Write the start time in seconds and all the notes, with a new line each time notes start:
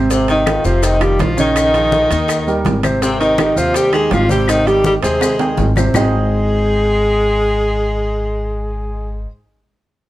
Already playing: G#1
0.10 C3 C4 C5, high bongo, high conga, high timbale, maracas
0.28 D#3 D#4, high bongo, high conga, high timbale, maracas
0.46 D#3 D#4 F4, high bongo, high conga, high timbale, low timbale, claves, maracas
0.65 F1 C3 F3 C4 F4 C5, high bongo, high conga, maracas
0.83 D#3 D#4, high bongo, high conga, high timbale, maracas
1.00 D#3 G3 D#4 F4 G4, high bongo, high conga, high timbale, claves, maracas
1.19 A#1 F3 F4, high bongo, low bongo, high conga, high timbale, low timbale, maracas
1.37 C#3 D#3 C#4 D#4 C#5, high conga, maracas
1.56 high bongo, high timbale, claves, maracas
1.74 F3 F4 G#4, high bongo, high conga, high timbale, maracas
1.92 high bongo, high conga, low timbale, maracas
2.10 D#2 D#3 D#4 D#5, high bongo, high conga, high timbale, maracas
2.28 high bongo, high conga, high timbale, claves, maracas
2.47 G3 G4 A#4, high bongo, high conga, maracas
2.65 G#1, high bongo, low bongo, high conga, high timbale, low timbale, maracas
2.83 C3 C4 C5, high conga, high timbale, claves, maracas
3.01 C3 C4 C5, high bongo, high conga, high timbale, maracas
3.19 D#3 D#4, high bongo, high conga, high timbale, maracas
3.38 D#3 D#4 G4, high bongo, high conga, high timbale, low timbale, claves, maracas
3.56 D#2 C3 F3 C4 F4 C5, high bongo, high conga, maracas
3.73 G3 G4, high bongo, high conga, high timbale, maracas
3.93 D#3 G#3 D#4 G4 G#4, high bongo, high conga, high timbale, claves, maracas
4.11 G#1 F3 F4, high bongo, low bongo, high conga, high timbale, low timbale, maracas
4.29 C3 G3 C4 G4 C5, high conga, maracas
4.48 D#3 D#4, high bongo, high conga, high timbale, claves, maracas
4.66 D#3 G3 D#4 G4, high conga, high timbale, maracas
4.84 G3 G4, high bongo, high conga, low timbale, maracas
5.03 D#2 C3 G#3 C4 G#4 C5, high bongo, high conga, high timbale, maracas
5.21 high bongo, high conga, high timbale, claves, maracas
5.39 D#3 D#4 G5, high bongo, high conga, high timbale, maracas
5.57 G#1, low bongo, high conga, low timbale, maracas
5.76 C3 C4 C5, low bongo, high conga, low timbale, claves, maracas
5.94 G#1 G#3 D#4 G#4 C5 D#5 G5, low bongo, low conga, low timbale, claves, maracas